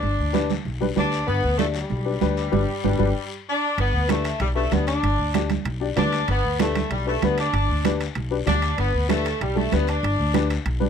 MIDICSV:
0, 0, Header, 1, 5, 480
1, 0, Start_track
1, 0, Key_signature, 1, "major"
1, 0, Tempo, 312663
1, 45, Time_signature, 4, 2, 24, 8
1, 16724, End_track
2, 0, Start_track
2, 0, Title_t, "Upright piano"
2, 0, Program_c, 0, 0
2, 505, Note_on_c, 0, 62, 75
2, 507, Note_on_c, 0, 67, 64
2, 516, Note_on_c, 0, 71, 84
2, 767, Note_off_c, 0, 62, 0
2, 768, Note_off_c, 0, 67, 0
2, 772, Note_off_c, 0, 71, 0
2, 1236, Note_on_c, 0, 62, 70
2, 1236, Note_on_c, 0, 67, 69
2, 1253, Note_on_c, 0, 71, 84
2, 1324, Note_off_c, 0, 62, 0
2, 1324, Note_off_c, 0, 67, 0
2, 1333, Note_off_c, 0, 71, 0
2, 1463, Note_on_c, 0, 62, 68
2, 1473, Note_on_c, 0, 67, 67
2, 1477, Note_on_c, 0, 71, 74
2, 1810, Note_off_c, 0, 62, 0
2, 1815, Note_off_c, 0, 67, 0
2, 1817, Note_off_c, 0, 71, 0
2, 2434, Note_on_c, 0, 62, 64
2, 2439, Note_on_c, 0, 74, 70
2, 2440, Note_on_c, 0, 67, 59
2, 2691, Note_off_c, 0, 62, 0
2, 2694, Note_off_c, 0, 67, 0
2, 2694, Note_off_c, 0, 74, 0
2, 3144, Note_on_c, 0, 62, 64
2, 3154, Note_on_c, 0, 67, 58
2, 3159, Note_on_c, 0, 71, 67
2, 3238, Note_off_c, 0, 62, 0
2, 3243, Note_off_c, 0, 67, 0
2, 3245, Note_off_c, 0, 71, 0
2, 3389, Note_on_c, 0, 62, 75
2, 3399, Note_on_c, 0, 67, 78
2, 3404, Note_on_c, 0, 71, 91
2, 3732, Note_off_c, 0, 62, 0
2, 3737, Note_off_c, 0, 67, 0
2, 3740, Note_off_c, 0, 71, 0
2, 3861, Note_on_c, 0, 62, 83
2, 3863, Note_on_c, 0, 71, 80
2, 3865, Note_on_c, 0, 67, 90
2, 4024, Note_off_c, 0, 62, 0
2, 4025, Note_off_c, 0, 71, 0
2, 4026, Note_off_c, 0, 67, 0
2, 4359, Note_on_c, 0, 62, 85
2, 4365, Note_on_c, 0, 67, 79
2, 4365, Note_on_c, 0, 71, 78
2, 4514, Note_off_c, 0, 62, 0
2, 4518, Note_off_c, 0, 67, 0
2, 4518, Note_off_c, 0, 71, 0
2, 4587, Note_on_c, 0, 67, 85
2, 4588, Note_on_c, 0, 62, 91
2, 4589, Note_on_c, 0, 71, 90
2, 4747, Note_off_c, 0, 67, 0
2, 4748, Note_off_c, 0, 62, 0
2, 4748, Note_off_c, 0, 71, 0
2, 6263, Note_on_c, 0, 62, 68
2, 6266, Note_on_c, 0, 67, 56
2, 6277, Note_on_c, 0, 71, 72
2, 6524, Note_off_c, 0, 62, 0
2, 6526, Note_off_c, 0, 67, 0
2, 6532, Note_off_c, 0, 71, 0
2, 6990, Note_on_c, 0, 62, 64
2, 6990, Note_on_c, 0, 67, 57
2, 6998, Note_on_c, 0, 71, 70
2, 7080, Note_off_c, 0, 62, 0
2, 7080, Note_off_c, 0, 67, 0
2, 7084, Note_off_c, 0, 71, 0
2, 7235, Note_on_c, 0, 62, 69
2, 7239, Note_on_c, 0, 67, 65
2, 7244, Note_on_c, 0, 74, 77
2, 7574, Note_off_c, 0, 62, 0
2, 7576, Note_off_c, 0, 67, 0
2, 7579, Note_off_c, 0, 74, 0
2, 8200, Note_on_c, 0, 62, 72
2, 8208, Note_on_c, 0, 67, 74
2, 8211, Note_on_c, 0, 74, 84
2, 8453, Note_off_c, 0, 62, 0
2, 8456, Note_off_c, 0, 67, 0
2, 8458, Note_off_c, 0, 74, 0
2, 8907, Note_on_c, 0, 62, 72
2, 8920, Note_on_c, 0, 67, 73
2, 8926, Note_on_c, 0, 74, 85
2, 8998, Note_off_c, 0, 62, 0
2, 9005, Note_off_c, 0, 67, 0
2, 9008, Note_off_c, 0, 74, 0
2, 9148, Note_on_c, 0, 62, 72
2, 9158, Note_on_c, 0, 67, 61
2, 9170, Note_on_c, 0, 71, 77
2, 9491, Note_off_c, 0, 62, 0
2, 9495, Note_off_c, 0, 67, 0
2, 9501, Note_off_c, 0, 71, 0
2, 10115, Note_on_c, 0, 62, 67
2, 10121, Note_on_c, 0, 71, 75
2, 10124, Note_on_c, 0, 67, 65
2, 10370, Note_off_c, 0, 62, 0
2, 10373, Note_off_c, 0, 71, 0
2, 10374, Note_off_c, 0, 67, 0
2, 10825, Note_on_c, 0, 62, 61
2, 10840, Note_on_c, 0, 67, 54
2, 10850, Note_on_c, 0, 71, 74
2, 10917, Note_off_c, 0, 62, 0
2, 10924, Note_off_c, 0, 67, 0
2, 10929, Note_off_c, 0, 71, 0
2, 11094, Note_on_c, 0, 67, 61
2, 11095, Note_on_c, 0, 62, 70
2, 11112, Note_on_c, 0, 71, 81
2, 11424, Note_off_c, 0, 62, 0
2, 11424, Note_off_c, 0, 67, 0
2, 11432, Note_off_c, 0, 71, 0
2, 12035, Note_on_c, 0, 62, 81
2, 12047, Note_on_c, 0, 67, 72
2, 12053, Note_on_c, 0, 71, 83
2, 12290, Note_off_c, 0, 62, 0
2, 12296, Note_off_c, 0, 67, 0
2, 12299, Note_off_c, 0, 71, 0
2, 12748, Note_on_c, 0, 62, 71
2, 12757, Note_on_c, 0, 67, 66
2, 12761, Note_on_c, 0, 71, 78
2, 12838, Note_off_c, 0, 62, 0
2, 12843, Note_off_c, 0, 67, 0
2, 12845, Note_off_c, 0, 71, 0
2, 12983, Note_on_c, 0, 62, 69
2, 12986, Note_on_c, 0, 67, 59
2, 12995, Note_on_c, 0, 74, 80
2, 13328, Note_off_c, 0, 62, 0
2, 13330, Note_off_c, 0, 67, 0
2, 13334, Note_off_c, 0, 74, 0
2, 13937, Note_on_c, 0, 62, 71
2, 13946, Note_on_c, 0, 67, 62
2, 13956, Note_on_c, 0, 71, 75
2, 14201, Note_off_c, 0, 62, 0
2, 14206, Note_off_c, 0, 67, 0
2, 14211, Note_off_c, 0, 71, 0
2, 14656, Note_on_c, 0, 62, 57
2, 14666, Note_on_c, 0, 67, 60
2, 14667, Note_on_c, 0, 69, 66
2, 14752, Note_off_c, 0, 62, 0
2, 14757, Note_off_c, 0, 67, 0
2, 14758, Note_off_c, 0, 69, 0
2, 14918, Note_on_c, 0, 62, 72
2, 14925, Note_on_c, 0, 67, 64
2, 14933, Note_on_c, 0, 71, 83
2, 15255, Note_off_c, 0, 62, 0
2, 15259, Note_off_c, 0, 67, 0
2, 15263, Note_off_c, 0, 71, 0
2, 15869, Note_on_c, 0, 62, 83
2, 15873, Note_on_c, 0, 67, 67
2, 15874, Note_on_c, 0, 71, 85
2, 16127, Note_off_c, 0, 62, 0
2, 16128, Note_off_c, 0, 67, 0
2, 16129, Note_off_c, 0, 71, 0
2, 16578, Note_on_c, 0, 62, 80
2, 16585, Note_on_c, 0, 67, 66
2, 16585, Note_on_c, 0, 71, 85
2, 16673, Note_off_c, 0, 62, 0
2, 16676, Note_off_c, 0, 67, 0
2, 16676, Note_off_c, 0, 71, 0
2, 16724, End_track
3, 0, Start_track
3, 0, Title_t, "Saxophone section"
3, 0, Program_c, 1, 65
3, 0, Note_on_c, 1, 62, 89
3, 764, Note_off_c, 1, 62, 0
3, 1504, Note_on_c, 1, 62, 97
3, 1941, Note_off_c, 1, 62, 0
3, 1953, Note_on_c, 1, 59, 113
3, 2405, Note_off_c, 1, 59, 0
3, 2421, Note_on_c, 1, 57, 83
3, 2534, Note_off_c, 1, 57, 0
3, 2664, Note_on_c, 1, 55, 86
3, 5251, Note_off_c, 1, 55, 0
3, 5343, Note_on_c, 1, 62, 101
3, 5780, Note_off_c, 1, 62, 0
3, 5825, Note_on_c, 1, 59, 101
3, 6261, Note_off_c, 1, 59, 0
3, 6296, Note_on_c, 1, 57, 88
3, 6759, Note_on_c, 1, 55, 81
3, 6769, Note_off_c, 1, 57, 0
3, 6868, Note_off_c, 1, 55, 0
3, 6989, Note_on_c, 1, 57, 90
3, 7218, Note_off_c, 1, 57, 0
3, 7243, Note_on_c, 1, 59, 85
3, 7471, Note_on_c, 1, 62, 95
3, 7482, Note_off_c, 1, 59, 0
3, 8374, Note_off_c, 1, 62, 0
3, 9158, Note_on_c, 1, 62, 106
3, 9606, Note_off_c, 1, 62, 0
3, 9672, Note_on_c, 1, 59, 101
3, 10104, Note_off_c, 1, 59, 0
3, 10139, Note_on_c, 1, 57, 91
3, 10577, Note_off_c, 1, 57, 0
3, 10611, Note_on_c, 1, 55, 80
3, 10830, Note_off_c, 1, 55, 0
3, 10852, Note_on_c, 1, 57, 86
3, 11070, Note_off_c, 1, 57, 0
3, 11102, Note_on_c, 1, 59, 86
3, 11331, Note_off_c, 1, 59, 0
3, 11349, Note_on_c, 1, 62, 93
3, 12234, Note_off_c, 1, 62, 0
3, 12999, Note_on_c, 1, 62, 104
3, 13446, Note_off_c, 1, 62, 0
3, 13481, Note_on_c, 1, 59, 99
3, 13928, Note_off_c, 1, 59, 0
3, 13955, Note_on_c, 1, 57, 87
3, 14404, Note_off_c, 1, 57, 0
3, 14445, Note_on_c, 1, 55, 88
3, 14683, Note_off_c, 1, 55, 0
3, 14684, Note_on_c, 1, 57, 92
3, 14922, Note_off_c, 1, 57, 0
3, 14950, Note_on_c, 1, 59, 84
3, 15159, Note_off_c, 1, 59, 0
3, 15171, Note_on_c, 1, 62, 96
3, 16125, Note_off_c, 1, 62, 0
3, 16724, End_track
4, 0, Start_track
4, 0, Title_t, "Upright bass"
4, 0, Program_c, 2, 32
4, 41, Note_on_c, 2, 31, 89
4, 234, Note_off_c, 2, 31, 0
4, 286, Note_on_c, 2, 38, 74
4, 861, Note_off_c, 2, 38, 0
4, 999, Note_on_c, 2, 35, 82
4, 1385, Note_off_c, 2, 35, 0
4, 1478, Note_on_c, 2, 38, 77
4, 1865, Note_off_c, 2, 38, 0
4, 1961, Note_on_c, 2, 31, 93
4, 2154, Note_off_c, 2, 31, 0
4, 2210, Note_on_c, 2, 38, 77
4, 2783, Note_off_c, 2, 38, 0
4, 2920, Note_on_c, 2, 35, 87
4, 3306, Note_off_c, 2, 35, 0
4, 3403, Note_on_c, 2, 38, 73
4, 3787, Note_off_c, 2, 38, 0
4, 3878, Note_on_c, 2, 31, 91
4, 4059, Note_off_c, 2, 31, 0
4, 4361, Note_on_c, 2, 31, 96
4, 4541, Note_off_c, 2, 31, 0
4, 4601, Note_on_c, 2, 31, 90
4, 4780, Note_off_c, 2, 31, 0
4, 5799, Note_on_c, 2, 31, 89
4, 5992, Note_off_c, 2, 31, 0
4, 6031, Note_on_c, 2, 38, 77
4, 6612, Note_off_c, 2, 38, 0
4, 6753, Note_on_c, 2, 35, 88
4, 7141, Note_off_c, 2, 35, 0
4, 7237, Note_on_c, 2, 38, 78
4, 7623, Note_off_c, 2, 38, 0
4, 7721, Note_on_c, 2, 31, 94
4, 7913, Note_off_c, 2, 31, 0
4, 7950, Note_on_c, 2, 38, 74
4, 8531, Note_off_c, 2, 38, 0
4, 8671, Note_on_c, 2, 35, 90
4, 9059, Note_off_c, 2, 35, 0
4, 9153, Note_on_c, 2, 38, 78
4, 9540, Note_off_c, 2, 38, 0
4, 9645, Note_on_c, 2, 31, 91
4, 9836, Note_off_c, 2, 31, 0
4, 9889, Note_on_c, 2, 38, 77
4, 10462, Note_off_c, 2, 38, 0
4, 10603, Note_on_c, 2, 35, 92
4, 10986, Note_off_c, 2, 35, 0
4, 11084, Note_on_c, 2, 38, 80
4, 11467, Note_off_c, 2, 38, 0
4, 11562, Note_on_c, 2, 31, 94
4, 11754, Note_off_c, 2, 31, 0
4, 11799, Note_on_c, 2, 38, 83
4, 12376, Note_off_c, 2, 38, 0
4, 12520, Note_on_c, 2, 35, 92
4, 12905, Note_off_c, 2, 35, 0
4, 12992, Note_on_c, 2, 38, 86
4, 13379, Note_off_c, 2, 38, 0
4, 13477, Note_on_c, 2, 31, 93
4, 13670, Note_off_c, 2, 31, 0
4, 13723, Note_on_c, 2, 38, 71
4, 14298, Note_off_c, 2, 38, 0
4, 14443, Note_on_c, 2, 35, 88
4, 14826, Note_off_c, 2, 35, 0
4, 14928, Note_on_c, 2, 38, 79
4, 15309, Note_off_c, 2, 38, 0
4, 15397, Note_on_c, 2, 31, 92
4, 15590, Note_off_c, 2, 31, 0
4, 15641, Note_on_c, 2, 38, 82
4, 16216, Note_off_c, 2, 38, 0
4, 16358, Note_on_c, 2, 35, 94
4, 16724, Note_off_c, 2, 35, 0
4, 16724, End_track
5, 0, Start_track
5, 0, Title_t, "Drums"
5, 40, Note_on_c, 9, 74, 65
5, 56, Note_on_c, 9, 63, 29
5, 194, Note_off_c, 9, 74, 0
5, 209, Note_off_c, 9, 63, 0
5, 522, Note_on_c, 9, 73, 73
5, 530, Note_on_c, 9, 63, 93
5, 676, Note_off_c, 9, 73, 0
5, 684, Note_off_c, 9, 63, 0
5, 763, Note_on_c, 9, 73, 58
5, 773, Note_on_c, 9, 63, 68
5, 917, Note_off_c, 9, 73, 0
5, 927, Note_off_c, 9, 63, 0
5, 1002, Note_on_c, 9, 74, 65
5, 1016, Note_on_c, 9, 63, 29
5, 1156, Note_off_c, 9, 74, 0
5, 1170, Note_off_c, 9, 63, 0
5, 1259, Note_on_c, 9, 63, 55
5, 1412, Note_off_c, 9, 63, 0
5, 1489, Note_on_c, 9, 63, 86
5, 1493, Note_on_c, 9, 73, 63
5, 1642, Note_off_c, 9, 63, 0
5, 1646, Note_off_c, 9, 73, 0
5, 1719, Note_on_c, 9, 73, 66
5, 1872, Note_off_c, 9, 73, 0
5, 1958, Note_on_c, 9, 63, 28
5, 1965, Note_on_c, 9, 74, 64
5, 2112, Note_off_c, 9, 63, 0
5, 2119, Note_off_c, 9, 74, 0
5, 2438, Note_on_c, 9, 73, 75
5, 2442, Note_on_c, 9, 63, 95
5, 2592, Note_off_c, 9, 73, 0
5, 2595, Note_off_c, 9, 63, 0
5, 2668, Note_on_c, 9, 73, 69
5, 2822, Note_off_c, 9, 73, 0
5, 2913, Note_on_c, 9, 74, 59
5, 2914, Note_on_c, 9, 63, 30
5, 3067, Note_off_c, 9, 63, 0
5, 3067, Note_off_c, 9, 74, 0
5, 3398, Note_on_c, 9, 63, 78
5, 3399, Note_on_c, 9, 73, 61
5, 3551, Note_off_c, 9, 63, 0
5, 3553, Note_off_c, 9, 73, 0
5, 3639, Note_on_c, 9, 73, 62
5, 3792, Note_off_c, 9, 73, 0
5, 3876, Note_on_c, 9, 74, 86
5, 3886, Note_on_c, 9, 63, 79
5, 4030, Note_off_c, 9, 74, 0
5, 4040, Note_off_c, 9, 63, 0
5, 4353, Note_on_c, 9, 74, 96
5, 4366, Note_on_c, 9, 63, 93
5, 4506, Note_off_c, 9, 74, 0
5, 4519, Note_off_c, 9, 63, 0
5, 4587, Note_on_c, 9, 74, 89
5, 4604, Note_on_c, 9, 63, 90
5, 4741, Note_off_c, 9, 74, 0
5, 4758, Note_off_c, 9, 63, 0
5, 5807, Note_on_c, 9, 65, 67
5, 5810, Note_on_c, 9, 63, 27
5, 5811, Note_on_c, 9, 74, 63
5, 5961, Note_off_c, 9, 65, 0
5, 5963, Note_off_c, 9, 63, 0
5, 5965, Note_off_c, 9, 74, 0
5, 6281, Note_on_c, 9, 65, 74
5, 6281, Note_on_c, 9, 73, 71
5, 6291, Note_on_c, 9, 63, 93
5, 6434, Note_off_c, 9, 65, 0
5, 6435, Note_off_c, 9, 73, 0
5, 6444, Note_off_c, 9, 63, 0
5, 6517, Note_on_c, 9, 73, 64
5, 6525, Note_on_c, 9, 65, 64
5, 6670, Note_off_c, 9, 73, 0
5, 6678, Note_off_c, 9, 65, 0
5, 6753, Note_on_c, 9, 65, 70
5, 6767, Note_on_c, 9, 74, 61
5, 6771, Note_on_c, 9, 63, 35
5, 6907, Note_off_c, 9, 65, 0
5, 6920, Note_off_c, 9, 74, 0
5, 6924, Note_off_c, 9, 63, 0
5, 7237, Note_on_c, 9, 73, 62
5, 7245, Note_on_c, 9, 65, 63
5, 7255, Note_on_c, 9, 63, 82
5, 7390, Note_off_c, 9, 73, 0
5, 7398, Note_off_c, 9, 65, 0
5, 7409, Note_off_c, 9, 63, 0
5, 7476, Note_on_c, 9, 73, 70
5, 7491, Note_on_c, 9, 65, 64
5, 7629, Note_off_c, 9, 73, 0
5, 7644, Note_off_c, 9, 65, 0
5, 7730, Note_on_c, 9, 74, 67
5, 7731, Note_on_c, 9, 65, 71
5, 7745, Note_on_c, 9, 63, 29
5, 7883, Note_off_c, 9, 74, 0
5, 7885, Note_off_c, 9, 65, 0
5, 7898, Note_off_c, 9, 63, 0
5, 8198, Note_on_c, 9, 73, 73
5, 8201, Note_on_c, 9, 65, 69
5, 8212, Note_on_c, 9, 63, 93
5, 8352, Note_off_c, 9, 73, 0
5, 8355, Note_off_c, 9, 65, 0
5, 8365, Note_off_c, 9, 63, 0
5, 8438, Note_on_c, 9, 65, 64
5, 8439, Note_on_c, 9, 73, 64
5, 8452, Note_on_c, 9, 63, 73
5, 8591, Note_off_c, 9, 65, 0
5, 8592, Note_off_c, 9, 73, 0
5, 8605, Note_off_c, 9, 63, 0
5, 8679, Note_on_c, 9, 74, 57
5, 8681, Note_on_c, 9, 65, 69
5, 8694, Note_on_c, 9, 63, 33
5, 8833, Note_off_c, 9, 74, 0
5, 8835, Note_off_c, 9, 65, 0
5, 8847, Note_off_c, 9, 63, 0
5, 9161, Note_on_c, 9, 65, 64
5, 9161, Note_on_c, 9, 66, 66
5, 9161, Note_on_c, 9, 73, 62
5, 9170, Note_on_c, 9, 63, 81
5, 9170, Note_on_c, 9, 64, 85
5, 9314, Note_off_c, 9, 65, 0
5, 9314, Note_off_c, 9, 66, 0
5, 9314, Note_off_c, 9, 73, 0
5, 9323, Note_off_c, 9, 63, 0
5, 9323, Note_off_c, 9, 64, 0
5, 9404, Note_on_c, 9, 65, 60
5, 9408, Note_on_c, 9, 73, 68
5, 9557, Note_off_c, 9, 65, 0
5, 9562, Note_off_c, 9, 73, 0
5, 9641, Note_on_c, 9, 65, 66
5, 9656, Note_on_c, 9, 63, 28
5, 9657, Note_on_c, 9, 74, 69
5, 9794, Note_off_c, 9, 65, 0
5, 9810, Note_off_c, 9, 63, 0
5, 9810, Note_off_c, 9, 74, 0
5, 10124, Note_on_c, 9, 65, 69
5, 10130, Note_on_c, 9, 63, 99
5, 10135, Note_on_c, 9, 73, 75
5, 10278, Note_off_c, 9, 65, 0
5, 10284, Note_off_c, 9, 63, 0
5, 10289, Note_off_c, 9, 73, 0
5, 10370, Note_on_c, 9, 65, 73
5, 10383, Note_on_c, 9, 63, 69
5, 10385, Note_on_c, 9, 73, 62
5, 10523, Note_off_c, 9, 65, 0
5, 10537, Note_off_c, 9, 63, 0
5, 10539, Note_off_c, 9, 73, 0
5, 10603, Note_on_c, 9, 65, 75
5, 10615, Note_on_c, 9, 74, 64
5, 10628, Note_on_c, 9, 63, 31
5, 10757, Note_off_c, 9, 65, 0
5, 10769, Note_off_c, 9, 74, 0
5, 10782, Note_off_c, 9, 63, 0
5, 11086, Note_on_c, 9, 73, 58
5, 11091, Note_on_c, 9, 65, 71
5, 11095, Note_on_c, 9, 63, 87
5, 11239, Note_off_c, 9, 73, 0
5, 11244, Note_off_c, 9, 65, 0
5, 11249, Note_off_c, 9, 63, 0
5, 11325, Note_on_c, 9, 65, 63
5, 11335, Note_on_c, 9, 73, 67
5, 11479, Note_off_c, 9, 65, 0
5, 11488, Note_off_c, 9, 73, 0
5, 11570, Note_on_c, 9, 65, 69
5, 11570, Note_on_c, 9, 74, 64
5, 11575, Note_on_c, 9, 63, 30
5, 11724, Note_off_c, 9, 65, 0
5, 11724, Note_off_c, 9, 74, 0
5, 11728, Note_off_c, 9, 63, 0
5, 12047, Note_on_c, 9, 73, 68
5, 12049, Note_on_c, 9, 65, 74
5, 12053, Note_on_c, 9, 63, 94
5, 12200, Note_off_c, 9, 73, 0
5, 12202, Note_off_c, 9, 65, 0
5, 12206, Note_off_c, 9, 63, 0
5, 12287, Note_on_c, 9, 73, 69
5, 12291, Note_on_c, 9, 65, 64
5, 12441, Note_off_c, 9, 73, 0
5, 12445, Note_off_c, 9, 65, 0
5, 12518, Note_on_c, 9, 65, 68
5, 12527, Note_on_c, 9, 74, 66
5, 12540, Note_on_c, 9, 63, 32
5, 12671, Note_off_c, 9, 65, 0
5, 12681, Note_off_c, 9, 74, 0
5, 12693, Note_off_c, 9, 63, 0
5, 13006, Note_on_c, 9, 65, 69
5, 13008, Note_on_c, 9, 73, 67
5, 13013, Note_on_c, 9, 63, 82
5, 13013, Note_on_c, 9, 64, 83
5, 13159, Note_off_c, 9, 65, 0
5, 13161, Note_off_c, 9, 73, 0
5, 13166, Note_off_c, 9, 63, 0
5, 13166, Note_off_c, 9, 64, 0
5, 13238, Note_on_c, 9, 65, 63
5, 13241, Note_on_c, 9, 73, 64
5, 13391, Note_off_c, 9, 65, 0
5, 13394, Note_off_c, 9, 73, 0
5, 13481, Note_on_c, 9, 65, 67
5, 13487, Note_on_c, 9, 74, 66
5, 13497, Note_on_c, 9, 63, 28
5, 13634, Note_off_c, 9, 65, 0
5, 13641, Note_off_c, 9, 74, 0
5, 13650, Note_off_c, 9, 63, 0
5, 13963, Note_on_c, 9, 65, 68
5, 13966, Note_on_c, 9, 73, 76
5, 13970, Note_on_c, 9, 63, 100
5, 14116, Note_off_c, 9, 65, 0
5, 14119, Note_off_c, 9, 73, 0
5, 14123, Note_off_c, 9, 63, 0
5, 14202, Note_on_c, 9, 73, 66
5, 14213, Note_on_c, 9, 65, 68
5, 14356, Note_off_c, 9, 73, 0
5, 14367, Note_off_c, 9, 65, 0
5, 14447, Note_on_c, 9, 74, 60
5, 14452, Note_on_c, 9, 65, 74
5, 14462, Note_on_c, 9, 63, 33
5, 14601, Note_off_c, 9, 74, 0
5, 14606, Note_off_c, 9, 65, 0
5, 14615, Note_off_c, 9, 63, 0
5, 14689, Note_on_c, 9, 63, 61
5, 14843, Note_off_c, 9, 63, 0
5, 14920, Note_on_c, 9, 63, 80
5, 14922, Note_on_c, 9, 73, 64
5, 14930, Note_on_c, 9, 65, 65
5, 15074, Note_off_c, 9, 63, 0
5, 15076, Note_off_c, 9, 73, 0
5, 15084, Note_off_c, 9, 65, 0
5, 15157, Note_on_c, 9, 73, 61
5, 15177, Note_on_c, 9, 65, 66
5, 15310, Note_off_c, 9, 73, 0
5, 15330, Note_off_c, 9, 65, 0
5, 15402, Note_on_c, 9, 74, 64
5, 15407, Note_on_c, 9, 63, 28
5, 15419, Note_on_c, 9, 65, 67
5, 15555, Note_off_c, 9, 74, 0
5, 15560, Note_off_c, 9, 63, 0
5, 15573, Note_off_c, 9, 65, 0
5, 15880, Note_on_c, 9, 63, 97
5, 15882, Note_on_c, 9, 65, 66
5, 15885, Note_on_c, 9, 73, 72
5, 16034, Note_off_c, 9, 63, 0
5, 16035, Note_off_c, 9, 65, 0
5, 16039, Note_off_c, 9, 73, 0
5, 16122, Note_on_c, 9, 73, 59
5, 16127, Note_on_c, 9, 65, 65
5, 16276, Note_off_c, 9, 73, 0
5, 16281, Note_off_c, 9, 65, 0
5, 16361, Note_on_c, 9, 65, 69
5, 16364, Note_on_c, 9, 63, 31
5, 16366, Note_on_c, 9, 74, 62
5, 16515, Note_off_c, 9, 65, 0
5, 16518, Note_off_c, 9, 63, 0
5, 16519, Note_off_c, 9, 74, 0
5, 16602, Note_on_c, 9, 63, 65
5, 16724, Note_off_c, 9, 63, 0
5, 16724, End_track
0, 0, End_of_file